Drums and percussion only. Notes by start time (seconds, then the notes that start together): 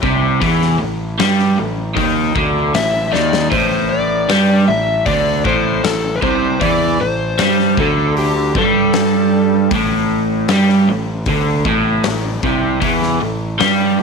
0.03 kick
0.42 kick, open hi-hat
0.61 snare
1.19 snare, open hi-hat
1.39 snare
1.97 kick, open hi-hat
2.36 kick
2.74 snare, open hi-hat
3.14 snare
3.33 snare
3.52 kick, open hi-hat
4.29 snare, open hi-hat
5.06 kick, open hi-hat
5.45 kick
5.84 snare, open hi-hat
6.22 kick
6.61 kick, open hi-hat
7.38 snare, open hi-hat
7.59 snare
7.77 kick
8.17 open hi-hat
8.55 kick
8.93 snare, open hi-hat
9.71 kick, open hi-hat
10.48 snare, open hi-hat
10.69 snare
11.26 kick, open hi-hat
11.65 kick
12.04 snare, open hi-hat
12.43 kick
12.82 kick, open hi-hat
13.02 snare
13.60 snare, open hi-hat